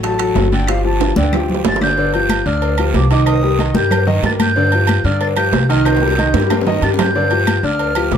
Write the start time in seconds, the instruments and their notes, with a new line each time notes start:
Already playing: upright bass A1
0.03 grand piano F#3 F#4 A4, flute A5, high bongo, high conga, high timbale, long guiro
0.19 grand piano F#3 F#4 A4, high bongo, high conga, high timbale, claves
0.35 upright bass G1, high bongo, low bongo, high conga, low timbale, short guiro
0.52 grand piano D3 D4 D5, flute G5, high bongo, high conga, short guiro
0.67 grand piano F3 F4 G4, flute F5, high bongo, high conga, high timbale, long guiro, claves
0.84 grand piano F3 F4 G4, flute A5, high bongo, high conga
1.00 high bongo, high conga, high timbale, short guiro
1.16 upright bass D2, grand piano D3 D4 D5, flute G5, high conga, short guiro
1.23 high timbale
1.33 grand piano F3 F4 G4, high bongo, high conga, low conga, high timbale, long guiro, claves
1.49 grand piano F3 F4 G4, high bongo, high conga, low conga
1.54 low timbale
1.65 upright bass G1, flute A6, high bongo, low bongo, high conga, low timbale, short guiro
1.76 low timbale
1.81 grand piano D3 D4 D5, flute G6, high bongo, high conga, short guiro, claves
1.87 low timbale
1.97 grand piano D3 D4 D5, cowbell, long guiro
2.14 grand piano F3 F4 G4, flute G6, high conga, low agogo
2.29 cowbell, high conga, low timbale, low agogo, short guiro, claves
2.46 upright bass D2, grand piano D3 D4 D5, flute F6, cowbell, high conga, short guiro
2.62 cowbell, high conga, low agogo, long guiro
2.78 grand piano F3 F4 G4, high conga, low agogo, claves
2.94 upright bass C2, flute D6, cowbell, high conga, low timbale, short guiro
3.11 grand piano D#3 D#4 D#5, flute D6, cowbell, low agogo, short guiro
3.26 flute D#6, cowbell, low agogo, long guiro, claves
3.43 grand piano G3 G4 A#4, high conga
3.58 grand piano D#3 D#4 D#5, cowbell, high conga, low timbale, low agogo, short guiro
3.74 upright bass G2, grand piano G3 G4 A#4, flute G6, high conga, short guiro
3.91 cowbell, high conga, low conga, low agogo, long guiro, claves
4.07 grand piano D#3 D#4 D#5, high conga, low conga
4.23 upright bass G2, grand piano G3 G4 A#4, flute A6, cowbell, high conga, low timbale, low agogo, short guiro
4.40 flute G6, high conga, low agogo, short guiro, claves
4.56 grand piano D3 D4 D5, cowbell, high conga, long guiro
4.72 grand piano F3 F4 G4, high conga, low agogo
4.87 cowbell, high conga, low timbale, low agogo, short guiro, claves
5.04 upright bass G2, grand piano D3 D4 D5, flute F6, cowbell, high conga, short guiro
5.21 flute A6, cowbell, high conga, low agogo, long guiro
5.36 grand piano F3 F4 G4, flute G6, high conga, low agogo, claves
5.53 upright bass C2, cowbell, high conga, low timbale, short guiro
5.69 grand piano D#3 D#4 D#5, flute F6, cowbell, low agogo, short guiro
5.85 flute G6, cowbell, high bongo, high conga, low agogo, long guiro, claves
5.97 high bongo
6.01 grand piano G3 G4 A#4, high conga
6.07 high bongo
6.18 grand piano D#3 D#4 D#5, cowbell, high conga, low timbale, low agogo, short guiro
6.34 upright bass G2, grand piano G3 G4 A#4, high conga, high timbale, short guiro
6.40 high bongo
6.50 cowbell, low bongo, high conga, high timbale, low agogo, long guiro, claves
6.61 low bongo
6.66 grand piano D#3 D#4 D#5, low conga, low timbale
6.72 low bongo
6.82 upright bass G2, grand piano G3 G4 A#4, flute A6, cowbell, low bongo, low agogo, short guiro
6.94 low bongo
6.99 flute G6, low conga, low timbale, low agogo, short guiro, claves
7.04 low bongo
7.15 grand piano D3 D4 D5, cowbell, high conga, long guiro
7.31 grand piano F3 F4 G4, high conga, low agogo
7.47 cowbell, high conga, low timbale, low agogo, short guiro, claves
7.63 upright bass D2, grand piano D3 D4 D5, flute F6, cowbell, high conga, short guiro
7.79 cowbell, high conga, low agogo, long guiro
7.95 grand piano F3 F4 G4, high conga, low agogo, claves
8.12 upright bass C2, flute D6, cowbell, high conga, low timbale, short guiro